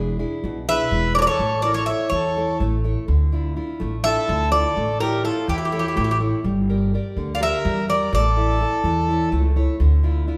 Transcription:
Already playing: E1 E3 D4 E4 G#4
0.19 D4 E4 G#4
0.44 B1 B2
0.68 D4 E4 G#4 B4 E5
0.91 E1 E3
1.15 D4 E4 G#4 A#4 C#5 D5
1.20 A4 A#4 D5
1.27 A4 C#5
1.39 A1 A3
1.62 E4 A4 A#4 C#5 D5
1.74 A4 C#5
1.86 E4 A4 C#5 E5
2.10 E2 E3 C#5
2.15 A4
2.37 E4 A4 C#5
2.60 A1 A3
2.84 E4 A4 C#5
3.08 D2 D3
3.32 D4 E4 F4
3.56 D4 E4 F4
3.80 A1 A3
4.03 D4 E4 F4 A4 E5
4.28 D2 D3
4.51 D4 E4 F4 A4 D5
4.76 A1 A3
5.00 E4 G4 A4 A#4 C#5
5.24 E4 F4 A4 C#5
5.48 E2 E3 E4 G4
5.58 G4
5.65 G4
5.72 E4 G4 A4 C#5
5.79 G4
5.88 G4
5.96 A1 A3 G4
6.04 G4
6.11 G4
6.20 E4 A4 C#5
6.44 G1 G3
6.69 G4 A#4 D5
6.94 G4 A#4 D5
7.17 D2 D3
7.35 D5 F5
7.40 G4 A#4 D5 E5
7.65 E2 G3
7.88 G4 A#4 D5
8.13 A1 A3 A4 D5
8.37 E4 A4 E5
8.61 E4 A4 E5
8.84 E2 E3
9.08 E4 A4 C#5
9.32 C#2 A3
9.56 E4 A4 C#5
9.80 D2 D3
10.03 D4 E4 F4
10.28 D4 E4 F4

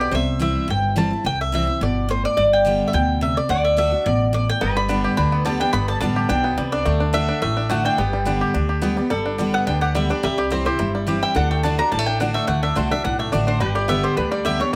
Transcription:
Already playing: B2 B3
0.00 G4 D5
0.11 C2 C3 C5 E5
0.39 E3 G3 C4 E4 E5
0.68 G1 G2 G5
0.96 E3 G3 C4 E4 A5
1.11 C4 E4
1.24 C2 C3 G5
1.41 E5
1.52 E3 G3 C4 E4 E5
1.67 C4 E4
1.81 G1 B2 D5
2.09 A2 C5
2.25 D5
2.37 G1 G2 D5
2.53 G5
2.65 D3 G3 B3 G4
2.88 E5
2.93 D2 B2 G5
3.21 C3 E5
3.37 D5
3.49 D2 D3 D5 F#5
3.65 E5
3.77 D3 A3 D4 F#4 E5
3.91 D4 F#4
4.06 A1 B2 D5
4.33 A2 D5
4.49 G5
4.61 G1 G2 B3 B4
4.77 G3 B5
4.88 D3 G3 B3 D4 G4
5.04 G4
5.17 D2 D3 D4 B5
5.32 B3
5.45 D3 G3 B3 G4 A5
5.60 B3 D4 G4 G5
5.73 G1 G2 B3 B5
5.88 G3 A5
6.01 A1 D3 G3 B3 D4 G4 A5
6.16 G4
6.29 B1 B2 D4 G5
6.44 B3
6.58 C2 C3 G3
6.72 D4 D5
6.85 D2 D3 A3 A4
7.00 D4
7.13 D3 A3 D4 F#4 E5
7.29 D4
7.42 A1 A2 A3 E5
7.57 D4
7.69 D3 A3 D4 F#4 F#5
7.85 D4 G5
7.98 G1 G2 B3 G4
8.13 G3
8.25 D3 G3 B3 D4 G4
8.41 G4
8.54 D2 D3 D4
8.69 G4
8.81 D3 G3 B3 G4
8.97 G3 B3 G4
9.10 G1 G2 G3 A4
9.26 D4
9.38 D3 G3 B3 G4
9.54 B3 F#5
9.67 D2 D3 D4 G5
9.81 G4 F#5
9.95 D3 G3 B3 G4 E5
10.09 B3 D4 G4 D5
10.23 C2 C3 G3 G4 E5
10.38 G4 D5
10.50 E3 G3 C4 E4 C5
10.65 C4 E4 G4 C5
10.79 G1 G2 E4
10.95 G3
11.07 E3 G3 C4 E4 G4
11.23 E4 G5
11.35 D2 D3 D4 A4 F#5
11.51 A3 G5
11.63 D3 A3 D4 F#4 A5
11.78 D4 F#4 A#5
11.92 A1 A2 G3 A5
11.99 A3
12.06 D4 G5
12.20 D3 A3 D4 F#4 F#5
12.34 A3 E5
12.47 D2 D3 A3 F#5
12.63 D4 E5
12.76 C2 D3 A3 D4 F#4 C5
12.91 D4 F#4 E5
13.04 B1 A2 D4 F#5
13.19 A3 E5
13.32 A1 D3 A3 D4 F#4 D5
13.47 D4 C5
13.60 G1 G2 G3 G4 B4
13.75 G4 D5
13.88 D3 G3 B3 G4 E5
14.03 G4 C5
14.17 D2 D3 D4 B4
14.31 G3 D5
14.45 D3 G3 B3 G4 E5
14.60 B3 D4 G4 C#5

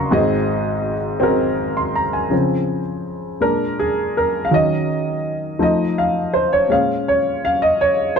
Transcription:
Already playing: C#4 F#4 A#4 D#5 F5 A#5 C6 C#6 D#6
0.11 G#1 G#2 B3 F#4 G#4 D#5
0.17 C4
1.20 C4 F#4 G#4 A#4
1.77 C6
1.96 A#5
2.13 G#5
2.30 C#3 F3 C4
3.41 A#2 G#3 D4 A#4
3.79 G#4
4.17 A#4
4.45 F5
4.51 D#3 F#3 C#4 D#5
5.59 F3 A3 D#4 D#5
5.98 F5
6.33 C5
6.53 C#5
6.69 A#2 G#3 C#4 F5
7.08 C#5
7.45 F5
7.62 D#5
7.81 C#5
8.16 C5

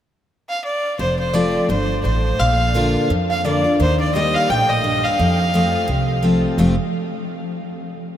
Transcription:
0.49 F5
0.64 D5
0.99 F1 F2 C5
1.18 C5
1.33 F3 A3 C4 F4 D5
1.69 G1 G2 C5
2.04 A1 A2 C5
2.39 A#1 A#2 F5
2.74 D3 A#3 D4 F4
3.10 F2
3.30 F5
3.44 D3 A#3 D4 F4 D5
3.64 D4 F4
3.80 D#2 D#3 C5
4.00 D5
4.15 G3 A#3 D#4 G4 D#5
4.34 F5
4.50 A#1 A2 G5
4.70 D#5
4.84 G2
5.04 F5
5.19 F2
5.54 F3 A3 C4 F4
5.88 C2 C3
6.22 F3 A3 C4 F4
6.58 F1 F2 C3 F3 A3 C4 F4

